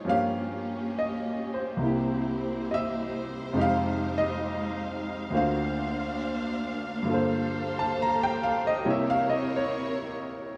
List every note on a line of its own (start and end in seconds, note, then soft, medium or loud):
0.00 1.77 F4 medium
0.05 1.80 G2 medium
0.05 1.81 F3 soft
0.05 1.80 A#3 medium
0.05 1.80 C#4 medium
0.05 1.82 C#4 medium
0.05 5.28 G4 medium
0.09 1.83 G4 medium
0.09 0.91 F5 loud
0.99 1.52 D#5 medium
1.54 2.66 C5 medium
1.77 3.54 C2 soft
1.77 3.53 C3 soft
1.82 3.56 A#3 soft
1.82 3.55 A#3 medium
1.82 3.54 C4 medium
1.82 3.54 E4 medium
1.82 3.57 E4 soft
1.82 5.28 C5 medium
1.86 3.57 G4 medium
2.71 2.76 D#5 medium
2.71 3.54 E5 medium
3.53 5.30 F2 medium
3.53 5.30 C3 medium
3.53 5.31 G#3 medium
3.53 5.29 G#3 medium
3.57 5.30 D#4 medium
3.57 5.32 D#4 medium
3.57 5.32 G4 medium
3.57 8.81 F5 medium
3.61 4.14 F5 loud
4.18 5.29 D#5 medium
5.30 7.06 D2 medium
5.30 7.03 D3 medium
5.30 7.05 A#3 soft
5.30 8.82 A#3 medium
5.30 7.06 D4 medium
5.30 7.08 F4 medium
5.30 7.06 C5 medium
5.35 7.09 F#4 soft
5.35 7.09 C5 medium
5.35 6.18 F5 medium
7.02 8.82 G2 medium
7.02 8.83 D3 medium
7.02 8.84 A#3 medium
7.02 8.82 A4 medium
7.07 8.85 F4 medium
7.07 10.57 G4 medium
7.07 8.86 A4 medium
7.07 8.83 C5 medium
7.14 8.88 C5 medium
7.79 7.94 A5 medium
8.02 8.27 A#5 medium
8.23 8.52 G5 medium
8.43 8.63 F5 medium
8.67 8.83 D#5 medium
8.80 10.57 C4 medium
8.80 10.57 E4 medium
8.80 10.57 A#4 medium
8.80 10.57 C#5 medium
8.85 10.57 C3 medium
8.85 10.57 G3 medium
8.85 10.57 A#3 soft
8.85 10.57 E4 medium
8.85 9.55 C#5 medium
8.90 9.16 E5 medium
9.10 9.40 F5 medium
9.30 9.51 D#5 medium
9.56 10.44 C#5 medium